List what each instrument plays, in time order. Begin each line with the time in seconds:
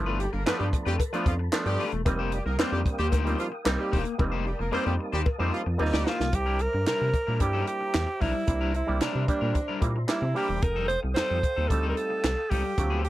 Already playing: analog synth bass G1, clav F3 A3 B3 E4, tonewheel organ A4 A5 B5
0.06 clean electric guitar A3 D4 F4 B4
0.19 horn section G3 G4, muted clean electric guitar stroke, closed hi-hat
0.32 analog synth bass G1, horn section A#3 A#4, muted clean electric guitar stroke
0.45 analog synth bass G2, clav F3 A3 B3 D4, clean electric guitar A3 D4 F4 B4, horn section B3 B4, snare, clap, closed hi-hat, cowbell
0.59 analog synth bass G2, horn section G3 G4
0.73 muted clean electric guitar stroke, kick, closed hi-hat
0.85 analog synth bass F2, horn section G3 G4, clean electric guitar A3 D4 F4 B4
0.99 muted clean electric guitar stroke, kick, closed hi-hat, cowbell
1.13 clav F3 A3 B3 D4, horn section F3 F4, clean electric guitar A3 D4 F4 B4, closed hi-hat
1.26 analog synth bass F2, horn section F3 F4, kick, closed hi-hat
1.39 muted clean electric guitar stroke
1.52 clav F3 A3 B3 D4, muted clean electric guitar stroke, snare, clap, closed hi-hat, cowbell
1.66 analog synth bass G2, horn section G3 G4, muted clean electric guitar stroke
1.79 clean electric guitar A3 D4 F4 B4, open hi-hat
1.92 analog synth bass E1, muted clean electric guitar stroke, closed hi-hat
2.05 analog synth bass F1, clav G3 A#3 C4 D#4, tonewheel organ A#4 F5 G5 D#6, muted clean electric guitar stroke, kick, closed hi-hat, cowbell
2.19 clean electric guitar A#3 D#4 G4 C5
2.32 horn section G3 G4, muted clean electric guitar stroke, closed hi-hat
2.45 analog synth bass C2, horn section A#3 A#4, muted clean electric guitar stroke
2.58 analog synth bass F2, clav G3 A#3 C4 D4, clean electric guitar A#3 D#4 G4 C5, horn section C4 C5, snare, clap, closed hi-hat, cowbell
2.72 analog synth bass F2, horn section G3 G4
2.86 muted clean electric guitar stroke, kick, closed hi-hat
2.99 analog synth bass D#2, horn section G3 G4, clean electric guitar A#3 D#4 G4 C5
3.12 analog synth bass D2, clean electric guitar A#3 D#4 G4 C5, kick, closed hi-hat, cowbell
3.25 horn section F3 F4, clav G3 A#3 C4 D#4, closed hi-hat
3.38 horn section F3 F4, muted clean electric guitar stroke, closed hi-hat
3.52 muted clean electric guitar stroke
3.65 analog synth bass C2, clav G3 A#3 C4 D#4, muted clean electric guitar stroke, snare, clap, closed hi-hat, cowbell
3.79 horn section G3 G4, muted clean electric guitar stroke
3.92 analog synth bass E1, clean electric guitar A#3 D#4 G4 C5, kick, open hi-hat
4.05 muted clean electric guitar stroke, closed hi-hat
4.18 analog synth bass F1, clav G3 A#3 C4 D#4, tonewheel organ A5, muted clean electric guitar stroke, kick, cowbell
4.32 clean electric guitar A#3 D#4 G4 C5
4.46 horn section G3 G4, muted clean electric guitar stroke
4.59 analog synth bass F1, horn section A#3 A#4, muted clean electric guitar stroke
4.71 analog synth bass F2, clav G3 A#3 C4 D#4, clean electric guitar A#3 D#4 G4 C5, horn section C4 C5, cowbell
4.86 analog synth bass F2, horn section G3 G4
4.99 muted clean electric guitar stroke
5.12 analog synth bass D#2, horn section G3 G4, clean electric guitar A#3 D#4 G4 C5
5.26 muted clean electric guitar stroke, kick, cowbell
5.39 analog synth bass F2, horn section F3 F4, clav G3 A#3 C4 D#4, clean electric guitar A#3 D#4 G4 C5
5.53 horn section F3 F4, muted clean electric guitar stroke
5.66 analog synth bass F2, muted clean electric guitar stroke
5.78 analog synth bass D#2, clav G3 A#3 C4 F4, alto saxophone D#4, muted clean electric guitar stroke, cowbell
5.92 analog synth bass D2, horn section G3 G4, muted clean electric guitar stroke, snare
6.06 clean electric guitar A#3 D#4 G4 C5, alto saxophone F4, snare
6.19 analog synth bass C2, muted clean electric guitar stroke, snare
6.32 analog synth bass C2, alto saxophone G4, tonewheel organ C5 E5 A#5 D6, muted clean electric guitar stroke, kick, closed hi-hat
6.46 clean electric guitar G3 D4 E4 A#4
6.59 alto saxophone A#4, muted clean electric guitar stroke, closed hi-hat
6.73 analog synth bass G2, muted clean electric guitar stroke
6.86 analog synth bass C3, clean electric guitar G3 D4 E4 A#4, alto saxophone A#4, snare, clap, closed hi-hat
7.02 analog synth bass C3
7.14 muted clean electric guitar stroke, kick, closed hi-hat
7.27 analog synth bass A#2, clean electric guitar G3 D4 E4 A#4
7.39 analog synth bass G2, clav G3 A#3 D4 E4, alto saxophone G4, muted clean electric guitar stroke, kick, closed hi-hat
7.53 clean electric guitar G3 D4 E4 A#4
7.67 alto saxophone G4, muted clean electric guitar stroke, closed hi-hat
7.81 muted clean electric guitar stroke
7.94 analog synth bass E2, muted clean electric guitar stroke, snare, clap, closed hi-hat
8.07 muted clean electric guitar stroke
8.20 analog synth bass B1, clean electric guitar G3 D4 E4 A#4, alto saxophone E4, kick, open hi-hat
8.34 muted clean electric guitar stroke
8.47 analog synth bass C2, clav G3 A#3 D4 E4, tonewheel organ C6, muted clean electric guitar stroke, kick, closed hi-hat
8.61 clean electric guitar G3 D4 E4 A#4
8.74 alto saxophone E4, muted clean electric guitar stroke, closed hi-hat
8.87 analog synth bass C2, clav G3 A#3 D4 G4, muted clean electric guitar stroke
9.01 analog synth bass C3, clean electric guitar G3 D4 E4 A#4, alto saxophone D4, snare, clap, closed hi-hat
9.15 analog synth bass C3
9.27 clav G3 A#3 D4 G4, alto saxophone D4, kick, closed hi-hat
9.41 analog synth bass A#2, clean electric guitar G3 D4 E4 A#4
9.55 muted clean electric guitar stroke, kick, closed hi-hat
9.68 clean electric guitar G3 D4 E4 A#4
9.81 analog synth bass A#2, clav G3 A#3 D4 E4, muted clean electric guitar stroke, kick, closed hi-hat
9.96 muted clean electric guitar stroke
10.08 clav G3 A#3 D4 E4, alto saxophone E4, muted clean electric guitar stroke, snare, clap, closed hi-hat
10.22 analog synth bass C3, muted clean electric guitar stroke
10.34 clav G3 A#3 D4 G4, clean electric guitar G3 D4 E4 A#4, alto saxophone G4, open hi-hat
10.49 analog synth bass E1, muted clean electric guitar stroke
10.62 analog synth bass F1, tonewheel organ A4 F5 G5 D#6, alto saxophone A#4, muted clean electric guitar stroke, kick, closed hi-hat
10.76 clean electric guitar G3 C4 D#4 A4
10.88 alto saxophone C5, muted clean electric guitar stroke, closed hi-hat
11.03 analog synth bass C2, muted clean electric guitar stroke
11.15 analog synth bass F2, clean electric guitar G3 C4 D#4 A4, alto saxophone C5, snare, clap, closed hi-hat
11.31 analog synth bass F2
11.43 muted clean electric guitar stroke, kick, closed hi-hat
11.56 analog synth bass D#2, clean electric guitar G3 C4 D#4 A4
11.68 analog synth bass D2, clav G3 A3 C4 D#4, alto saxophone A4, muted clean electric guitar stroke, kick, closed hi-hat
11.83 clean electric guitar G3 C4 D#4 A4
11.89 alto saxophone A#4
11.96 alto saxophone A4, muted clean electric guitar stroke, closed hi-hat
12.10 muted clean electric guitar stroke
12.24 analog synth bass C2, muted clean electric guitar stroke, snare, clap, closed hi-hat
12.37 muted clean electric guitar stroke
12.50 analog synth bass C#2, clean electric guitar G3 C4 D#4 A4, alto saxophone G4, kick, open hi-hat
12.64 muted clean electric guitar stroke
12.77 analog synth bass D2, clav F#3 A3 C4 F4, tonewheel organ F#4 C5 F5 D6, muted clean electric guitar stroke, kick, closed hi-hat
12.90 clean electric guitar F#3 C4 F4 A4
13.04 alto saxophone G4, muted clean electric guitar stroke, closed hi-hat